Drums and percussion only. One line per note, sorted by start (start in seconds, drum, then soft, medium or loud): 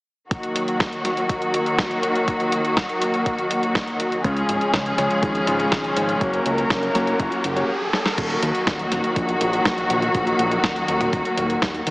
0.31 kick loud
0.31 closed hi-hat medium
0.43 closed hi-hat soft
0.56 closed hi-hat medium
0.68 closed hi-hat soft
0.80 kick loud
0.80 snare loud
0.80 closed hi-hat medium
0.93 closed hi-hat soft
1.05 snare soft
1.05 closed hi-hat medium
1.17 closed hi-hat soft
1.29 kick loud
1.29 closed hi-hat medium
1.42 closed hi-hat soft
1.54 closed hi-hat medium
1.66 closed hi-hat soft
1.79 kick loud
1.79 snare loud
1.79 closed hi-hat medium
1.91 closed hi-hat soft
2.03 closed hi-hat medium
2.15 closed hi-hat soft
2.28 kick loud
2.28 closed hi-hat medium
2.40 closed hi-hat soft
2.52 closed hi-hat medium
2.65 closed hi-hat soft
2.77 kick loud
2.77 snare loud
2.77 closed hi-hat medium
2.89 closed hi-hat soft
3.02 closed hi-hat medium
3.14 closed hi-hat soft
3.26 kick loud
3.26 closed hi-hat medium
3.38 closed hi-hat soft
3.51 closed hi-hat medium
3.63 closed hi-hat soft
3.75 kick loud
3.75 snare loud
3.75 closed hi-hat medium
3.87 closed hi-hat soft
4.00 closed hi-hat medium
4.12 closed hi-hat soft
4.24 kick loud
4.24 closed hi-hat medium
4.37 closed hi-hat soft
4.49 closed hi-hat medium
4.61 closed hi-hat soft
4.74 kick loud
4.74 snare loud
4.74 closed hi-hat medium
4.86 closed hi-hat soft
4.98 snare soft
4.98 closed hi-hat medium
5.10 closed hi-hat soft
5.23 kick loud
5.23 closed hi-hat medium
5.35 closed hi-hat soft
5.47 closed hi-hat medium
5.60 closed hi-hat soft
5.72 kick loud
5.72 snare loud
5.72 closed hi-hat medium
5.84 closed hi-hat soft
5.97 closed hi-hat medium
6.09 closed hi-hat soft
6.21 kick loud
6.21 closed hi-hat medium
6.33 closed hi-hat soft
6.46 closed hi-hat medium
6.58 closed hi-hat soft
6.70 kick loud
6.70 snare loud
6.70 closed hi-hat medium
6.83 closed hi-hat soft
6.95 snare soft
6.95 closed hi-hat medium
7.07 closed hi-hat soft
7.20 kick loud
7.20 closed hi-hat medium
7.32 closed hi-hat soft
7.44 closed hi-hat medium
7.56 closed hi-hat soft
7.93 snare medium
8.06 snare medium
8.18 kick loud
8.18 closed hi-hat medium
8.18 crash medium
8.30 closed hi-hat soft
8.43 closed hi-hat medium
8.55 closed hi-hat soft
8.67 kick loud
8.67 snare loud
8.67 closed hi-hat medium
8.79 closed hi-hat soft
8.92 snare soft
8.92 closed hi-hat medium
9.04 closed hi-hat soft
9.16 kick loud
9.16 closed hi-hat medium
9.29 closed hi-hat soft
9.41 closed hi-hat medium
9.53 closed hi-hat soft
9.65 kick loud
9.65 snare loud
9.65 closed hi-hat medium
9.78 closed hi-hat soft
9.90 closed hi-hat medium
10.02 closed hi-hat soft
10.15 kick loud
10.15 closed hi-hat medium
10.27 closed hi-hat soft
10.39 closed hi-hat medium
10.51 closed hi-hat soft
10.64 kick loud
10.64 snare loud
10.64 closed hi-hat medium
10.76 closed hi-hat soft
10.88 closed hi-hat medium
11.01 closed hi-hat soft
11.01 high tom medium
11.13 kick loud
11.13 closed hi-hat medium
11.25 closed hi-hat soft
11.38 closed hi-hat medium
11.50 closed hi-hat soft
11.62 kick loud
11.62 snare loud
11.62 closed hi-hat medium
11.74 closed hi-hat soft
11.87 closed hi-hat medium